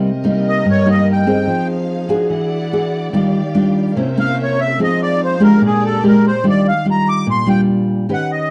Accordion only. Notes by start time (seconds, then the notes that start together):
0.49 D#5
0.71 C#5
0.90 D#5
1.13 G5
4.19 F5
4.43 C#5
4.61 E5
4.83 D#5
5.02 D5
5.24 C5
5.43 A#4
5.66 G#4
5.85 A4
6.08 A#4
6.27 C5
6.49 D5
6.68 F5
6.91 A#5
7.09 D6
7.31 C6
7.49 G5
8.13 F#5
8.32 D#5